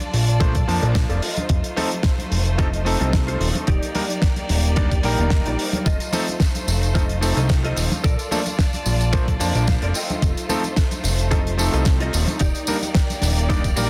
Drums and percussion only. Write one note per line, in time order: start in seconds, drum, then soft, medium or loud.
0.00 closed hi-hat medium
0.00 high conga medium
0.14 open hi-hat loud
0.28 closed hi-hat medium
0.40 kick loud
0.40 closed hi-hat medium
0.40 high conga medium
0.55 kick medium
0.55 closed hi-hat medium
0.69 open hi-hat loud
0.82 closed hi-hat medium
0.82 high conga medium
0.95 kick loud
0.95 snare loud
0.95 closed hi-hat medium
1.10 closed hi-hat soft
1.22 open hi-hat loud
1.37 closed hi-hat medium
1.37 high conga medium
1.49 kick loud
1.49 closed hi-hat medium
1.64 closed hi-hat medium
1.77 open hi-hat loud
1.77 high conga medium
1.92 closed hi-hat medium
2.03 kick loud
2.03 snare loud
2.03 closed hi-hat medium
2.18 closed hi-hat medium
2.18 high conga medium
2.32 open hi-hat loud
2.45 closed hi-hat medium
2.59 kick loud
2.59 closed hi-hat medium
2.59 high conga medium
2.74 closed hi-hat medium
2.86 open hi-hat loud
3.01 closed hi-hat soft
3.01 high conga medium
3.13 kick loud
3.13 snare loud
3.13 closed hi-hat loud
3.28 closed hi-hat medium
3.41 open hi-hat loud
3.55 closed hi-hat medium
3.55 high conga medium
3.67 kick loud
3.67 closed hi-hat medium
3.83 closed hi-hat medium
3.95 open hi-hat loud
3.95 high conga medium
4.10 closed hi-hat medium
4.22 kick loud
4.22 snare loud
4.22 closed hi-hat medium
4.36 closed hi-hat soft
4.36 high conga medium
4.49 snare soft
4.49 open hi-hat loud
4.65 closed hi-hat medium
4.76 kick loud
4.76 closed hi-hat medium
4.76 high conga medium
4.92 kick medium
4.92 closed hi-hat medium
5.03 open hi-hat loud
5.18 closed hi-hat medium
5.18 high conga medium
5.18 low conga medium
5.30 kick loud
5.30 snare loud
5.30 closed hi-hat medium
5.46 closed hi-hat medium
5.59 open hi-hat loud
5.73 closed hi-hat soft
5.73 high conga loud
5.86 kick loud
5.86 closed hi-hat loud
5.86 tambourine soft
6.00 closed hi-hat medium
6.00 tambourine soft
6.12 open hi-hat loud
6.12 tambourine medium
6.12 muted conga medium
6.12 high conga medium
6.28 closed hi-hat medium
6.28 tambourine soft
6.28 muted conga soft
6.40 kick loud
6.40 snare loud
6.40 closed hi-hat loud
6.40 tambourine soft
6.55 closed hi-hat medium
6.55 tambourine soft
6.55 high conga medium
6.68 open hi-hat medium
6.68 tambourine medium
6.68 muted conga soft
6.83 closed hi-hat medium
6.83 tambourine soft
6.95 kick loud
6.95 closed hi-hat medium
6.95 tambourine soft
6.95 high conga medium
7.09 closed hi-hat medium
7.22 open hi-hat loud
7.22 tambourine medium
7.37 closed hi-hat soft
7.37 tambourine soft
7.37 high conga medium
7.49 kick loud
7.49 snare loud
7.49 closed hi-hat medium
7.49 tambourine soft
7.64 closed hi-hat medium
7.76 open hi-hat loud
7.76 tambourine medium
7.92 closed hi-hat medium
7.92 tambourine soft
7.92 muted conga soft
7.92 high conga loud
8.04 kick loud
8.04 closed hi-hat medium
8.04 tambourine soft
8.19 closed hi-hat medium
8.19 tambourine soft
8.31 open hi-hat loud
8.31 tambourine medium
8.31 high conga medium
8.46 closed hi-hat medium
8.46 tambourine soft
8.46 muted conga soft
8.59 kick loud
8.59 snare loud
8.59 closed hi-hat loud
8.59 tambourine soft
8.73 closed hi-hat medium
8.73 tambourine soft
8.73 high conga medium
8.86 open hi-hat medium
8.86 tambourine medium
8.86 muted conga soft
9.01 closed hi-hat soft
9.01 tambourine soft
9.13 kick loud
9.13 closed hi-hat medium
9.13 tambourine soft
9.13 high conga medium
9.28 kick medium
9.28 closed hi-hat medium
9.40 open hi-hat loud
9.40 tambourine medium
9.55 closed hi-hat medium
9.55 tambourine soft
9.55 high conga medium
9.67 kick loud
9.67 snare loud
9.67 closed hi-hat medium
9.67 tambourine soft
9.82 closed hi-hat medium
9.94 open hi-hat loud
9.94 tambourine medium
10.10 closed hi-hat soft
10.10 tambourine soft
10.10 high conga medium
10.22 kick loud
10.22 closed hi-hat loud
10.22 tambourine soft
10.37 closed hi-hat medium
10.37 tambourine soft
10.49 open hi-hat medium
10.49 tambourine medium
10.49 muted conga medium
10.49 high conga medium
10.64 closed hi-hat medium
10.64 tambourine soft
10.64 muted conga medium
10.76 kick loud
10.76 snare loud
10.76 closed hi-hat medium
10.76 tambourine soft
10.91 closed hi-hat medium
10.91 tambourine soft
10.91 high conga medium
11.04 open hi-hat loud
11.04 tambourine medium
11.04 muted conga soft
11.18 closed hi-hat medium
11.18 tambourine soft
11.31 kick loud
11.31 closed hi-hat loud
11.31 tambourine soft
11.31 high conga medium
11.47 closed hi-hat medium
11.59 open hi-hat loud
11.59 tambourine medium
11.73 closed hi-hat medium
11.73 tambourine soft
11.73 high conga medium
11.85 kick loud
11.85 snare loud
11.85 closed hi-hat loud
11.85 tambourine soft
12.00 closed hi-hat medium
12.13 open hi-hat loud
12.13 tambourine medium
12.27 closed hi-hat medium
12.27 tambourine soft
12.27 muted conga soft
12.27 high conga medium
12.39 kick loud
12.39 closed hi-hat loud
12.39 tambourine soft
12.55 closed hi-hat medium
12.55 tambourine soft
12.67 open hi-hat loud
12.67 tambourine medium
12.67 muted conga medium
12.67 high conga medium
12.82 closed hi-hat medium
12.82 tambourine soft
12.82 muted conga medium
12.95 kick loud
12.95 snare loud
12.95 closed hi-hat loud
12.95 tambourine soft
13.10 closed hi-hat medium
13.10 tambourine soft
13.10 high conga medium
13.21 snare soft
13.21 open hi-hat loud
13.21 tambourine medium
13.21 muted conga medium
13.36 closed hi-hat medium
13.36 tambourine soft
13.50 kick loud
13.50 closed hi-hat medium
13.50 tambourine soft
13.50 high conga loud
13.64 kick medium
13.64 closed hi-hat medium
13.64 tambourine soft
13.77 open hi-hat loud
13.77 tambourine medium